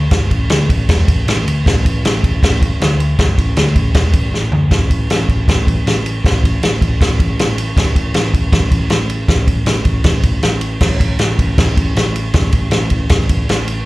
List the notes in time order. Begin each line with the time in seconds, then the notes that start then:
0.11 G1, kick, snare, ride
0.31 A1, kick, ride
0.49 D2, snare, ride
0.69 A1, kick, ride
0.89 E1, kick, snare, ride
1.08 A1, kick, ride
1.26 A1, snare, ride
1.45 D2, ride
1.66 A1, kick, snare, ride
1.85 A1, kick, ride
2.02 A1, snare, ride
2.24 A1, kick, ride
2.43 A1, kick, snare, ride
2.62 kick, ride
2.80 D2, snare, ride
3.00 ride
3.19 G1, kick, snare, ride
3.38 A1, kick, ride
3.56 D2, snare, ride
3.76 A1, kick, ride
3.94 E1, kick, snare, ride
4.13 A1, kick, ride
4.32 A1, snare
4.51 D2, floor tom
4.71 A1, kick, snare, ride
4.90 A1, kick, ride
5.10 A1, snare, ride
5.29 A1, kick, ride
5.48 A1, kick, snare, ride
5.67 A1, kick, ride
5.86 A1, snare, ride
6.06 ride
6.24 A1, kick, snare, ride
6.44 A1, kick, ride
6.62 A1, snare, ride
6.81 A1, kick, ride
7.00 A1, kick, snare, ride
7.20 A1, kick, ride
7.39 A1, snare, ride
7.58 ride
7.76 A1, kick, snare, ride
7.95 A1, kick, ride
8.14 A1, snare, ride
8.34 A1, kick, ride
8.52 A1, kick, snare, ride
8.71 A1, kick, ride
8.90 A1, snare, ride
9.09 ride
9.28 A1, kick, snare, ride
9.47 A1, kick, ride
9.66 A1, snare, ride
9.85 A1, kick, ride
10.04 A1, kick, snare, ride
10.23 A1, kick, ride
10.42 A1, snare, ride
10.61 ride
10.80 A1, kick, snare, crash
11.00 A1, kick, ride
11.19 A1, snare, ride
11.38 A1, kick, ride
11.58 A1, kick, snare, ride
11.77 A1, kick, ride
11.96 A1, snare, ride
12.16 ride
12.34 A1, kick, snare, ride
12.52 A1, kick, ride
12.70 A1, snare, ride
12.90 A1, kick, ride
13.09 A1, kick, snare, ride
13.29 A1, kick, ride
13.48 A1, snare, ride
13.68 ride